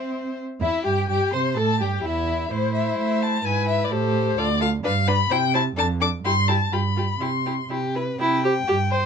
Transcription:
Already playing: C4 C5 E5
0.61 E2 E4 E5
0.84 G2 G4 G5
1.09 G2 G4 G5
1.33 C3 C5 C6
1.56 A2 A4 A5
1.80 G2 G4 G5
2.03 E2 E4 E5
2.51 A2 E4 C5
2.74 E5
2.98 A3 E5
3.22 A5
3.44 G#2 E4 B4 G#5
3.69 E5
3.84 D5
3.91 A2 G4 A4 C5
4.37 D2 F4 A4 D5
4.60 F4 A4 F5
4.84 G2 D4 B4 F5
5.07 D4 B4 B5
5.30 C3 E4 C5 G5
5.53 E4 C5 A5
5.77 F2 D4 A4 A5
6.00 D4 A4 D6
6.24 G2 E4 G4 C6
6.48 E4 G4 A5
6.72 G2 F4 G4 B5
6.96 F4 G4
7.20 C3 E4 G4 C6
7.46 E4 G4
7.70 C3 E4 G4
7.95 E4 B4
8.20 C3 E4 G5
8.44 G4 C5
8.68 G2 G4
8.91 C5

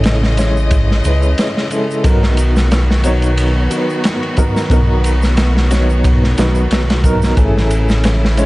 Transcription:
Already playing: A1 C#3 G#3 C#4 E4 G#4 A4 B4 D#5
0.04 snare, ride, shaker
0.23 snare
0.37 G#3 C#4 E4 C#5, snare, ride, shaker
0.57 shaker
0.71 kick, ride, shaker
0.91 snare
1.04 C#2 G#3 C#4 E4 B4, ride, shaker
1.22 shaker
1.38 snare, ride, shaker
1.57 snare
1.71 G#3 C#4 E4 A4, ride, shaker
1.91 shaker
2.03 B1 D#3 F#3 B3 D#4 F#4 A#4, kick, ride, shaker
2.23 snare
2.37 ride, shaker
2.56 snare, shaker
2.71 snare, ride, shaker
2.91 snare
3.04 F#3 B3 D#4 C#5, ride, shaker
3.22 ride, shaker
3.38 ride, shaker
3.70 F#3 B3 D#4 B4, ride, shaker
3.90 shaker
4.04 snare, ride, shaker
4.23 ride
4.37 F#3 B3 D#4 A#4, kick, ride, shaker
4.56 snare, shaker
4.70 B1 F#3 B3 D#4 A#4, kick, ride, shaker
5.04 ride, shaker
5.22 snare, shaker
5.37 snare, ride, shaker
5.57 snare
5.71 F#3 B3 D#4 C#5, snare, ride, shaker
5.90 shaker
6.04 kick, ride, shaker
6.24 snare
6.38 B1 F#3 B3 D#4 B4, snare, ride, shaker
6.55 shaker
6.71 B1, snare, ride, shaker
6.90 snare, ride
7.04 F#3 B3 D#4 A#4, kick, ride, shaker
7.22 snare, shaker
7.37 A1 C#3 C#4 E4 G#4 A4, kick, ride, shaker
7.57 snare
7.70 ride, shaker
7.89 snare, shaker
8.04 snare, ride, shaker
8.25 snare
8.37 G#3 C#4 E4 C#5, ride, shaker

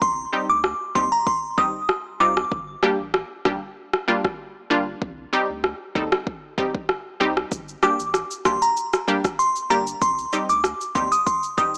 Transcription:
0.02 C2 C6, kick
0.33 G3 C4 D#4 G4
0.49 D2 D6
0.64 cross-stick
0.95 D#2 G3 C4 D#4 G4 C6, kick
1.12 A#5
1.27 C6, kick
1.58 G3 C4 D#4 G4 D#6, kick
1.89 cross-stick
2.20 C2 G3 C4 D#4 F4 D6
2.37 cross-stick
2.52 G1, kick
2.83 G3 A#3 D4 G4, cross-stick
3.00 A1
3.14 cross-stick
3.45 A#1 G3 A#3 D4 G4, kick, cross-stick
3.93 cross-stick
4.08 G3 A#3 D4 F4
4.25 kick, cross-stick
4.70 G1 G3 A#3 D4 F4
5.02 C2, kick
5.33 G3 C4 D#4 G4
5.50 D2
5.64 cross-stick
5.95 D#2 G3 C4 D#4 A4, kick
6.12 cross-stick
6.27 kick
6.58 G3 C4 D#4 G4, kick
6.75 kick
6.89 cross-stick
7.20 C2 G3 C4 D#4 G4
7.37 cross-stick
7.52 G1, kick, shaker
7.68 shaker
7.83 G3 A#3 D4 G4 D6, cross-stick, shaker
8.00 A1, shaker
8.14 cross-stick, shaker
8.31 shaker
8.45 A#1 G3 A#3 D4 G4 C6, kick, cross-stick, shaker
8.62 A#5, shaker
8.77 shaker
8.93 cross-stick, shaker
9.08 G3 A#3 D4 G4, shaker
9.24 kick, cross-stick, shaker
9.39 C6, shaker
9.56 shaker
9.70 G1 G3 A#3 D4 G4 A#5, shaker
9.87 shaker
10.02 C2 C6, kick, shaker
10.18 shaker
10.33 G3 C4 D#4 G4, shaker
10.49 D2 D6, shaker
10.64 cross-stick, shaker
10.81 shaker
10.95 D#2 G3 C4 D#4 G4 C6, kick, shaker
11.12 D#6, shaker
11.26 C6, kick, shaker
11.43 shaker
11.58 G3 C4 D#4 G4 D#6, kick, shaker
11.74 shaker

